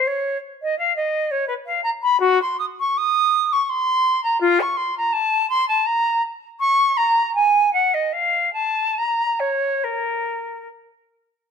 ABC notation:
X:1
M:3/4
L:1/16
Q:1/4=82
K:Ebm
V:1 name="Flute"
d3 e f e2 d c f b c' | [K:Bbm] G c' e' d' e'3 d' c'3 b | F d' c' b =a2 c' a b2 z2 | d'2 b2 a2 g e f2 =a2 |
b2 d2 B4 z4 |]